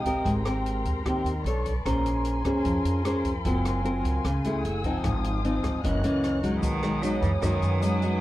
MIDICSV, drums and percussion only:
0, 0, Header, 1, 2, 480
1, 0, Start_track
1, 0, Tempo, 398671
1, 306, Time_signature, 4, 2, 24, 8
1, 9881, End_track
2, 0, Start_track
2, 0, Title_t, "Drums"
2, 62, Note_on_c, 9, 36, 48
2, 64, Note_on_c, 9, 42, 44
2, 183, Note_off_c, 9, 36, 0
2, 184, Note_off_c, 9, 42, 0
2, 305, Note_on_c, 9, 36, 55
2, 307, Note_on_c, 9, 42, 54
2, 425, Note_off_c, 9, 36, 0
2, 428, Note_off_c, 9, 42, 0
2, 545, Note_on_c, 9, 37, 62
2, 545, Note_on_c, 9, 42, 45
2, 665, Note_off_c, 9, 37, 0
2, 665, Note_off_c, 9, 42, 0
2, 794, Note_on_c, 9, 42, 39
2, 914, Note_off_c, 9, 42, 0
2, 1027, Note_on_c, 9, 42, 40
2, 1028, Note_on_c, 9, 36, 56
2, 1148, Note_off_c, 9, 42, 0
2, 1149, Note_off_c, 9, 36, 0
2, 1271, Note_on_c, 9, 36, 56
2, 1274, Note_on_c, 9, 37, 59
2, 1274, Note_on_c, 9, 42, 49
2, 1391, Note_off_c, 9, 36, 0
2, 1395, Note_off_c, 9, 37, 0
2, 1395, Note_off_c, 9, 42, 0
2, 1515, Note_on_c, 9, 42, 42
2, 1636, Note_off_c, 9, 42, 0
2, 1755, Note_on_c, 9, 42, 44
2, 1876, Note_off_c, 9, 42, 0
2, 1991, Note_on_c, 9, 36, 47
2, 1991, Note_on_c, 9, 42, 40
2, 2112, Note_off_c, 9, 36, 0
2, 2112, Note_off_c, 9, 42, 0
2, 2232, Note_on_c, 9, 36, 58
2, 2235, Note_on_c, 9, 37, 62
2, 2235, Note_on_c, 9, 42, 57
2, 2352, Note_off_c, 9, 36, 0
2, 2355, Note_off_c, 9, 37, 0
2, 2355, Note_off_c, 9, 42, 0
2, 2474, Note_on_c, 9, 42, 44
2, 2595, Note_off_c, 9, 42, 0
2, 2704, Note_on_c, 9, 42, 46
2, 2824, Note_off_c, 9, 42, 0
2, 2950, Note_on_c, 9, 37, 56
2, 2950, Note_on_c, 9, 42, 41
2, 2952, Note_on_c, 9, 36, 58
2, 3070, Note_off_c, 9, 37, 0
2, 3070, Note_off_c, 9, 42, 0
2, 3072, Note_off_c, 9, 36, 0
2, 3189, Note_on_c, 9, 42, 57
2, 3193, Note_on_c, 9, 36, 58
2, 3310, Note_off_c, 9, 42, 0
2, 3313, Note_off_c, 9, 36, 0
2, 3435, Note_on_c, 9, 42, 49
2, 3555, Note_off_c, 9, 42, 0
2, 3675, Note_on_c, 9, 37, 59
2, 3675, Note_on_c, 9, 42, 44
2, 3795, Note_off_c, 9, 37, 0
2, 3795, Note_off_c, 9, 42, 0
2, 3912, Note_on_c, 9, 42, 42
2, 3913, Note_on_c, 9, 36, 49
2, 4033, Note_off_c, 9, 42, 0
2, 4034, Note_off_c, 9, 36, 0
2, 4151, Note_on_c, 9, 42, 58
2, 4154, Note_on_c, 9, 36, 61
2, 4272, Note_off_c, 9, 42, 0
2, 4275, Note_off_c, 9, 36, 0
2, 4396, Note_on_c, 9, 37, 62
2, 4396, Note_on_c, 9, 42, 48
2, 4517, Note_off_c, 9, 37, 0
2, 4517, Note_off_c, 9, 42, 0
2, 4636, Note_on_c, 9, 42, 44
2, 4756, Note_off_c, 9, 42, 0
2, 4872, Note_on_c, 9, 36, 53
2, 4874, Note_on_c, 9, 42, 42
2, 4992, Note_off_c, 9, 36, 0
2, 4994, Note_off_c, 9, 42, 0
2, 5112, Note_on_c, 9, 37, 60
2, 5112, Note_on_c, 9, 42, 53
2, 5113, Note_on_c, 9, 36, 57
2, 5232, Note_off_c, 9, 37, 0
2, 5232, Note_off_c, 9, 42, 0
2, 5233, Note_off_c, 9, 36, 0
2, 5349, Note_on_c, 9, 42, 41
2, 5470, Note_off_c, 9, 42, 0
2, 5593, Note_on_c, 9, 42, 43
2, 5713, Note_off_c, 9, 42, 0
2, 5825, Note_on_c, 9, 42, 38
2, 5828, Note_on_c, 9, 36, 53
2, 5945, Note_off_c, 9, 42, 0
2, 5949, Note_off_c, 9, 36, 0
2, 6066, Note_on_c, 9, 37, 57
2, 6066, Note_on_c, 9, 42, 55
2, 6069, Note_on_c, 9, 36, 60
2, 6187, Note_off_c, 9, 37, 0
2, 6187, Note_off_c, 9, 42, 0
2, 6190, Note_off_c, 9, 36, 0
2, 6313, Note_on_c, 9, 42, 44
2, 6433, Note_off_c, 9, 42, 0
2, 6556, Note_on_c, 9, 42, 42
2, 6677, Note_off_c, 9, 42, 0
2, 6787, Note_on_c, 9, 37, 62
2, 6787, Note_on_c, 9, 42, 42
2, 6788, Note_on_c, 9, 36, 55
2, 6907, Note_off_c, 9, 37, 0
2, 6907, Note_off_c, 9, 42, 0
2, 6909, Note_off_c, 9, 36, 0
2, 7029, Note_on_c, 9, 36, 57
2, 7034, Note_on_c, 9, 42, 59
2, 7149, Note_off_c, 9, 36, 0
2, 7155, Note_off_c, 9, 42, 0
2, 7271, Note_on_c, 9, 42, 43
2, 7391, Note_off_c, 9, 42, 0
2, 7512, Note_on_c, 9, 37, 59
2, 7512, Note_on_c, 9, 42, 47
2, 7633, Note_off_c, 9, 37, 0
2, 7633, Note_off_c, 9, 42, 0
2, 7744, Note_on_c, 9, 36, 51
2, 7748, Note_on_c, 9, 42, 43
2, 7865, Note_off_c, 9, 36, 0
2, 7869, Note_off_c, 9, 42, 0
2, 7980, Note_on_c, 9, 42, 44
2, 7981, Note_on_c, 9, 36, 64
2, 7981, Note_on_c, 9, 82, 66
2, 8100, Note_off_c, 9, 42, 0
2, 8101, Note_off_c, 9, 36, 0
2, 8102, Note_off_c, 9, 82, 0
2, 8222, Note_on_c, 9, 37, 63
2, 8222, Note_on_c, 9, 42, 28
2, 8223, Note_on_c, 9, 82, 24
2, 8342, Note_off_c, 9, 37, 0
2, 8342, Note_off_c, 9, 42, 0
2, 8344, Note_off_c, 9, 82, 0
2, 8464, Note_on_c, 9, 42, 43
2, 8467, Note_on_c, 9, 82, 64
2, 8585, Note_off_c, 9, 42, 0
2, 8587, Note_off_c, 9, 82, 0
2, 8696, Note_on_c, 9, 42, 28
2, 8699, Note_on_c, 9, 36, 58
2, 8707, Note_on_c, 9, 82, 28
2, 8816, Note_off_c, 9, 42, 0
2, 8819, Note_off_c, 9, 36, 0
2, 8828, Note_off_c, 9, 82, 0
2, 8938, Note_on_c, 9, 37, 59
2, 8938, Note_on_c, 9, 42, 40
2, 8939, Note_on_c, 9, 36, 59
2, 8943, Note_on_c, 9, 82, 66
2, 9058, Note_off_c, 9, 37, 0
2, 9058, Note_off_c, 9, 42, 0
2, 9059, Note_off_c, 9, 36, 0
2, 9064, Note_off_c, 9, 82, 0
2, 9175, Note_on_c, 9, 42, 27
2, 9182, Note_on_c, 9, 82, 28
2, 9295, Note_off_c, 9, 42, 0
2, 9303, Note_off_c, 9, 82, 0
2, 9419, Note_on_c, 9, 42, 44
2, 9424, Note_on_c, 9, 82, 67
2, 9539, Note_off_c, 9, 42, 0
2, 9544, Note_off_c, 9, 82, 0
2, 9654, Note_on_c, 9, 42, 24
2, 9660, Note_on_c, 9, 82, 28
2, 9774, Note_off_c, 9, 42, 0
2, 9781, Note_off_c, 9, 82, 0
2, 9881, End_track
0, 0, End_of_file